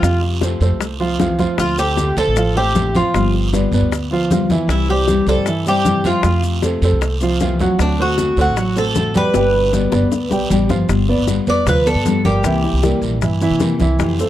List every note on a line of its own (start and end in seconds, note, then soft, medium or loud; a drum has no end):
0.00 0.58 F2 medium
0.00 0.40 C3 medium
0.00 0.41 A3 medium
0.00 0.20 F4 medium
0.00 0.35 F4 medium
0.00 0.35 F5 medium
0.00 high bongo medium
0.00 high conga soft
0.00 long guiro medium
0.00 maracas medium
0.04 0.42 C4 medium
0.04 0.42 F4 medium
0.22 high bongo soft
0.22 high conga soft
0.41 0.79 C3 medium
0.41 0.58 A3 medium
0.41 0.80 A3 medium
0.41 0.80 C4 medium
0.41 0.81 F4 medium
0.41 0.58 A4 medium
0.41 0.58 C5 medium
0.41 high bongo medium
0.41 high conga medium
0.41 short guiro medium
0.41 maracas medium
0.60 0.70 F2 medium
0.60 0.93 A3 medium
0.60 0.94 A4 medium
0.60 0.94 C5 medium
0.60 high conga soft
0.60 short guiro medium
0.60 maracas soft
0.70 1.45 C2 medium
0.80 muted nylon-string guitar stroke soft
0.80 high bongo medium
0.80 high conga soft
0.80 long guiro medium
0.80 maracas medium
1.00 1.16 F3 medium
1.00 1.19 A3 soft
1.00 1.19 C4 soft
1.00 1.19 F4 soft
1.00 1.16 F4 medium
1.00 1.17 F5 medium
1.00 high bongo soft
1.00 high conga soft
1.19 1.38 C3 medium
1.19 1.39 E3 medium
1.19 1.36 F3 medium
1.19 1.39 A3 medium
1.19 1.38 C4 medium
1.19 1.36 F4 medium
1.19 1.37 F4 medium
1.19 1.36 F5 medium
1.19 high bongo soft
1.19 low bongo medium
1.19 high conga medium
1.19 short guiro medium
1.19 maracas medium
1.38 1.71 F3 medium
1.38 1.57 A3 soft
1.38 1.57 C4 soft
1.38 1.58 F4 soft
1.38 1.71 F4 medium
1.38 1.72 F5 medium
1.38 high bongo soft
1.38 high conga medium
1.38 short guiro medium
1.38 maracas soft
1.57 2.14 D2 medium
1.57 1.95 D3 medium
1.57 1.96 A3 medium
1.57 1.97 C4 medium
1.57 1.97 F4 medium
1.57 1.77 F4 medium
1.57 high bongo medium
1.57 high conga soft
1.57 long guiro medium
1.57 maracas medium
1.78 2.10 A3 medium
1.78 2.17 G4 medium
1.78 2.10 A4 medium
1.78 2.11 C5 medium
1.78 high bongo soft
1.78 high conga soft
1.78 maracas medium
1.97 2.35 D3 medium
1.97 2.35 A3 medium
1.97 2.35 C4 medium
1.97 2.36 F4 medium
1.97 high bongo medium
1.97 high conga medium
1.97 short guiro medium
1.97 maracas medium
2.17 2.26 D2 loud
2.17 2.33 A3 medium
2.17 2.33 A4 medium
2.17 2.56 A4 medium
2.17 2.34 C5 medium
2.17 high conga soft
2.17 short guiro medium
2.17 maracas soft
2.27 3.01 A1 medium
2.36 2.53 F3 medium
2.36 2.53 F4 medium
2.36 2.53 F5 medium
2.36 muted nylon-string guitar stroke medium
2.36 high bongo medium
2.36 high conga soft
2.36 long guiro medium
2.36 maracas medium
2.55 2.88 A3 medium
2.55 2.74 A3 soft
2.55 2.75 C4 soft
2.55 2.74 F4 soft
2.55 2.96 G4 medium
2.55 2.88 A4 medium
2.55 2.89 C5 medium
2.55 high bongo soft
2.55 high conga soft
2.74 2.93 D3 medium
2.74 2.94 A3 medium
2.74 2.94 C4 medium
2.74 2.92 F4 medium
2.74 high bongo soft
2.74 low bongo medium
2.74 high conga medium
2.74 short guiro medium
2.74 maracas medium
2.94 3.11 F3 medium
2.94 3.14 A3 soft
2.94 3.14 C4 soft
2.94 3.13 F4 soft
2.94 3.11 F4 medium
2.94 3.32 F4 medium
2.94 3.12 F5 medium
2.94 high bongo soft
2.94 high conga medium
2.94 short guiro medium
2.94 maracas soft
3.14 3.69 G1 medium
3.14 3.47 F3 medium
3.14 3.51 G3 medium
3.14 3.52 B3 medium
3.14 3.47 F4 medium
3.14 3.53 F4 medium
3.14 3.47 F5 medium
3.14 high bongo medium
3.14 high conga soft
3.14 long guiro medium
3.14 maracas medium
3.34 high bongo soft
3.34 high conga soft
3.52 3.91 G3 medium
3.52 3.91 B3 medium
3.52 3.69 B3 medium
3.52 3.91 F4 medium
3.52 3.69 B4 medium
3.52 3.70 D5 medium
3.52 high bongo medium
3.52 high conga medium
3.52 short guiro medium
3.52 maracas medium
3.72 3.81 G1 loud
3.72 4.05 B3 medium
3.72 4.05 B4 medium
3.72 4.05 D5 medium
3.72 high conga soft
3.72 short guiro medium
3.72 maracas soft
3.81 4.55 D2 medium
3.91 muted nylon-string guitar stroke medium
3.91 high bongo medium
3.91 high conga soft
3.91 long guiro medium
3.91 maracas medium
4.11 4.28 F3 medium
4.11 4.30 B3 soft
4.11 4.30 F4 soft
4.11 4.28 F4 medium
4.11 4.28 F5 medium
4.11 high bongo soft
4.11 high conga soft
4.30 4.47 F3 medium
4.30 4.49 G3 medium
4.30 4.49 B3 medium
4.30 4.48 F4 medium
4.30 4.47 F4 medium
4.30 4.48 F5 medium
4.30 high bongo soft
4.30 low bongo medium
4.30 high conga medium
4.30 short guiro medium
4.30 maracas medium
4.49 4.82 E3 medium
4.49 4.69 B3 soft
4.49 4.83 E4 medium
4.49 4.68 F4 soft
4.49 4.83 E5 medium
4.49 high bongo soft
4.49 high conga medium
4.49 short guiro medium
4.49 maracas soft
4.68 5.24 C2 medium
4.68 5.07 C3 medium
4.68 5.08 E3 medium
4.68 5.08 G3 medium
4.68 5.08 C4 medium
4.68 4.88 E4 medium
4.68 5.08 E4 medium
4.68 high bongo medium
4.68 high conga soft
4.68 long guiro medium
4.68 maracas medium
4.89 5.21 G3 medium
4.89 5.21 G4 medium
4.89 5.26 G4 medium
4.89 5.21 C5 medium
4.89 high bongo soft
4.89 high conga soft
5.07 5.45 C3 medium
5.07 5.46 E3 medium
5.07 5.46 G3 medium
5.07 5.46 C4 medium
5.07 5.46 E4 medium
5.07 high bongo medium
5.07 high conga medium
5.07 short guiro medium
5.07 maracas medium
5.26 5.36 C2 medium
5.26 5.44 G3 medium
5.26 5.44 G4 medium
5.26 5.64 A4 medium
5.26 5.44 C5 medium
5.26 high conga soft
5.26 short guiro medium
5.26 maracas soft
5.37 6.11 G2 medium
5.46 5.63 E3 medium
5.46 5.63 E4 medium
5.46 5.64 E5 medium
5.46 muted nylon-string guitar stroke medium
5.46 high bongo medium
5.46 high conga soft
5.46 long guiro medium
5.46 maracas medium
5.65 5.98 G3 medium
5.65 5.85 G3 soft
5.65 5.85 C4 soft
5.65 5.85 E4 soft
5.65 5.99 G4 medium
5.65 6.07 G4 loud
5.65 5.99 C5 medium
5.65 high bongo soft
5.65 high conga soft
5.65 maracas medium
5.85 6.04 C3 medium
5.85 6.04 E3 medium
5.85 6.04 G3 medium
5.85 6.04 C4 medium
5.85 6.03 E4 medium
5.85 high bongo soft
5.85 low bongo medium
5.85 high conga medium
5.85 short guiro medium
5.85 maracas medium
6.04 6.21 F3 medium
6.04 6.24 G3 soft
6.04 6.24 C4 soft
6.04 6.23 E4 soft
6.04 6.21 F4 medium
6.04 6.42 F4 medium
6.04 6.22 F5 medium
6.04 high bongo soft
6.04 high conga medium
6.04 short guiro medium
6.04 maracas soft
6.23 6.79 F2 medium
6.23 6.61 C3 medium
6.23 6.62 A3 medium
6.23 6.62 C4 medium
6.23 6.57 F4 medium
6.23 6.63 F4 medium
6.23 6.57 F5 medium
6.23 high bongo medium
6.23 high conga soft
6.23 long guiro medium
6.23 maracas medium
6.43 high bongo soft
6.43 high conga soft
6.43 maracas medium
6.62 7.01 C3 medium
6.62 7.01 A3 medium
6.62 6.79 A3 medium
6.62 7.01 C4 medium
6.62 7.02 F4 medium
6.62 6.79 A4 medium
6.62 6.80 C5 medium
6.62 high bongo medium
6.62 high conga medium
6.62 short guiro medium
6.62 maracas medium
6.82 6.91 F2 medium
6.82 7.15 A3 medium
6.82 7.15 A4 medium
6.82 7.15 C5 medium
6.82 high conga soft
6.82 short guiro medium
6.82 maracas soft
6.92 7.66 C2 medium
7.01 muted nylon-string guitar stroke medium
7.01 high bongo medium
7.01 high conga soft
7.01 long guiro medium
7.01 maracas medium
7.21 7.38 F3 medium
7.21 7.40 A3 soft
7.21 7.40 C4 soft
7.21 7.40 F4 soft
7.21 7.38 F4 medium
7.21 7.38 F5 medium
7.21 high bongo soft
7.21 high conga soft
7.21 maracas medium
7.40 7.59 C3 medium
7.40 7.59 E3 medium
7.40 7.57 F3 medium
7.40 7.59 A3 medium
7.40 7.60 C4 medium
7.40 7.57 F4 medium
7.40 7.59 F4 medium
7.40 7.57 F5 medium
7.40 high bongo soft
7.40 low bongo medium
7.40 high conga medium
7.40 short guiro medium
7.40 maracas medium
7.59 7.92 F#3 medium
7.59 7.78 A3 soft
7.59 7.79 C4 soft
7.59 7.79 F4 soft
7.59 7.92 F#4 medium
7.59 7.93 F#5 medium
7.59 high bongo soft
7.59 high conga medium
7.59 short guiro medium
7.59 maracas soft
7.79 8.34 D2 medium
7.79 8.17 D3 medium
7.79 8.17 A3 medium
7.79 8.18 C4 medium
7.79 8.00 D4 medium
7.79 8.18 F#4 medium
7.79 high bongo medium
7.79 high conga soft
7.79 long guiro medium
7.79 maracas medium
7.99 8.31 A3 medium
7.99 8.40 F#4 medium
7.99 8.31 A4 medium
7.99 8.31 C5 medium
7.99 high bongo soft
7.99 high conga soft
8.18 8.56 D3 medium
8.18 8.56 A3 medium
8.18 8.57 C4 medium
8.18 8.57 F#4 medium
8.18 high bongo medium
8.18 high conga medium
8.18 short guiro medium
8.18 maracas medium
8.37 8.46 D2 medium
8.37 8.54 A3 medium
8.37 8.54 A4 medium
8.37 8.54 C5 medium
8.37 high conga soft
8.37 short guiro medium
8.37 maracas soft
8.41 8.78 F#4 medium
8.47 9.21 A1 medium
8.56 8.73 F#3 medium
8.56 8.73 F#4 medium
8.56 8.73 F#5 medium
8.56 muted nylon-string guitar stroke medium
8.56 high bongo medium
8.56 high conga soft
8.56 long guiro medium
8.56 maracas medium
8.76 9.08 A3 medium
8.76 8.94 A3 soft
8.76 8.95 C4 soft
8.76 8.95 F#4 soft
8.76 9.08 A4 medium
8.76 9.17 A4 loud
8.76 9.08 C5 medium
8.76 high bongo soft
8.76 high conga soft
8.76 maracas medium
8.95 9.14 D3 medium
8.95 9.14 A3 medium
8.95 9.13 C4 medium
8.95 9.13 F#4 medium
8.95 high bongo soft
8.95 low bongo medium
8.95 high conga medium
8.95 short guiro medium
8.95 maracas medium
9.14 9.31 G3 medium
9.14 9.34 A3 soft
9.14 9.33 C4 soft
9.14 9.33 F#4 soft
9.14 9.31 G4 medium
9.14 10.48 B4 medium
9.14 9.31 G5 medium
9.14 high bongo soft
9.14 high conga medium
9.14 short guiro medium
9.14 maracas soft
9.33 9.89 G1 medium
9.33 9.70 B2 medium
9.33 9.71 D3 medium
9.33 9.71 G3 medium
9.33 9.66 G3 medium
9.33 9.72 B3 medium
9.33 9.72 G4 medium
9.33 9.67 G4 medium
9.33 9.67 G5 medium
9.33 high bongo loud
9.33 high conga soft
9.33 long guiro medium
9.33 maracas medium
9.54 high conga soft
9.71 10.09 B2 medium
9.71 10.10 D3 medium
9.71 10.10 G3 medium
9.71 10.10 B3 medium
9.71 9.89 B3 medium
9.71 10.10 G4 medium
9.71 9.89 B4 medium
9.71 9.89 D5 medium
9.71 low bongo medium
9.71 high conga medium
9.71 short guiro medium
9.71 maracas medium
9.92 10.02 G1 medium
9.92 10.24 B3 medium
9.92 10.24 B4 medium
9.92 10.25 D5 medium
9.92 high bongo medium
9.92 high conga soft
9.92 short guiro medium
9.92 maracas soft
10.02 10.30 D2 medium
10.11 muted nylon-string guitar stroke medium
10.11 low bongo medium
10.11 high conga soft
10.11 long guiro medium
10.11 maracas medium
10.29 10.49 B1 medium
10.29 10.49 G3 soft
10.29 10.47 G3 medium
10.29 10.49 B3 soft
10.29 10.49 G4 soft
10.29 10.47 G4 medium
10.29 10.48 G5 medium
10.29 low bongo medium
10.29 high conga soft
10.29 maracas medium
10.49 10.68 A1 medium
10.49 10.68 B2 medium
10.49 10.69 D3 medium
10.49 10.69 G3 medium
10.49 10.67 G3 medium
10.49 10.68 B3 medium
10.49 10.66 G4 medium
10.49 10.67 G4 medium
10.49 10.67 G5 medium
10.49 high conga medium
10.49 short guiro medium
10.49 maracas medium
10.68 10.87 G1 medium
10.68 10.86 F3 medium
10.68 10.87 G3 soft
10.68 10.88 B3 soft
10.68 10.86 F4 medium
10.68 10.88 G4 soft
10.68 10.86 F5 medium
10.68 low bongo medium
10.68 high conga medium
10.68 short guiro medium
10.68 maracas soft
10.88 11.17 G1 loud
10.88 11.07 G3 medium
10.88 11.08 B3 medium
10.88 11.07 F4 medium
10.88 high bongo medium
10.88 long guiro medium
10.88 maracas medium
11.08 11.41 B3 medium
11.08 11.26 B3 soft
11.08 11.27 F4 medium
11.08 11.41 B4 medium
11.08 11.41 D5 medium
11.08 high bongo soft
11.08 high conga soft
11.18 11.37 G1 medium
11.27 11.64 G3 medium
11.27 11.65 B3 medium
11.27 11.66 F4 medium
11.27 high bongo medium
11.27 high conga medium
11.27 short guiro medium
11.27 maracas medium
11.47 11.65 F1 loud
11.47 11.64 B3 medium
11.47 11.64 B4 medium
11.47 11.64 D5 medium
11.47 11.68 D5 medium
11.47 high conga soft
11.47 short guiro medium
11.47 maracas soft
11.66 11.94 D2 medium
11.66 11.83 F3 medium
11.66 11.84 F4 medium
11.66 11.88 B4 medium
11.66 11.84 F5 medium
11.66 muted nylon-string guitar stroke medium
11.66 high bongo medium
11.66 high conga soft
11.66 low conga medium
11.66 long guiro medium
11.66 maracas medium
11.85 12.18 B3 medium
11.85 12.05 B3 soft
11.85 12.04 F4 soft
11.85 12.25 A4 medium
11.85 12.19 B4 medium
11.85 12.19 D5 medium
11.85 high bongo soft
11.85 high conga soft
11.85 maracas medium
11.95 12.23 G2 medium
12.05 12.24 G3 medium
12.05 12.25 B3 medium
12.05 12.23 F4 medium
12.05 high bongo soft
12.05 low bongo medium
12.05 high conga medium
12.05 short guiro medium
12.05 maracas medium
12.25 12.43 G1 medium
12.25 12.41 G3 medium
12.25 12.45 B3 soft
12.25 12.44 F4 soft
12.25 12.99 G4 medium
12.25 12.41 G4 medium
12.25 12.42 A#4 medium
12.25 high bongo soft
12.25 high conga medium
12.25 short guiro medium
12.25 maracas soft
12.43 12.72 C2 loud
12.43 12.63 C3 medium
12.43 12.63 E3 medium
12.43 12.76 E3 medium
12.43 12.63 A#3 medium
12.43 12.63 C4 medium
12.43 12.77 E4 medium
12.43 12.62 E4 medium
12.43 12.77 E5 medium
12.43 high bongo medium
12.43 long guiro medium
12.43 maracas medium
12.63 12.82 A#3 soft
12.63 12.83 C4 soft
12.63 12.82 E4 soft
12.63 high bongo soft
12.63 high conga soft
12.73 12.92 C2 medium
12.82 13.20 C3 medium
12.82 13.20 E3 medium
12.82 13.16 G3 medium
12.82 13.20 A#3 medium
12.82 13.20 C4 medium
12.82 13.21 E4 medium
12.82 13.16 G4 medium
12.82 13.16 A#4 medium
12.82 high bongo medium
12.82 high conga medium
12.82 short guiro medium
12.82 maracas medium
13.02 13.21 A#1 medium
13.02 high conga soft
13.02 short guiro medium
13.02 maracas soft
13.21 13.49 G2 medium
13.21 13.38 E3 medium
13.21 13.39 E4 medium
13.21 13.39 E5 medium
13.21 muted nylon-string guitar stroke medium
13.21 high bongo medium
13.21 high conga soft
13.21 long guiro medium
13.21 maracas medium
13.41 13.74 E3 medium
13.41 13.59 A#3 soft
13.41 13.60 C4 soft
13.41 13.60 E4 soft
13.41 13.74 E4 medium
13.41 13.74 E5 medium
13.41 high bongo soft
13.41 high conga soft
13.41 maracas medium
13.51 13.79 C3 medium
13.59 13.79 C3 medium
13.59 13.79 E3 medium
13.59 13.79 A#3 medium
13.59 13.79 C4 medium
13.59 13.78 E4 medium
13.59 high bongo soft
13.59 low bongo medium
13.59 high conga medium
13.59 short guiro medium
13.59 maracas medium
13.79 13.99 C2 medium
13.79 14.12 E3 medium
13.79 13.99 A#3 soft
13.79 13.99 C4 soft
13.79 13.99 E4 soft
13.79 14.13 E4 medium
13.79 14.13 E5 medium
13.79 high bongo soft
13.79 high conga medium
13.79 short guiro medium
13.79 maracas soft
13.98 14.27 F2 loud
13.98 14.18 C3 medium
13.98 14.18 E3 medium
13.98 14.18 A3 medium
13.98 14.18 C4 medium
13.98 14.17 F4 medium
13.98 high bongo medium
13.98 high conga soft
13.98 long guiro medium
13.98 maracas medium
14.18 14.29 A3 medium
14.18 14.29 A3 soft
14.18 14.29 C4 soft
14.18 14.29 F4 soft
14.18 14.29 A4 medium
14.18 14.29 C5 medium
14.18 high bongo soft
14.18 high conga soft
14.18 maracas medium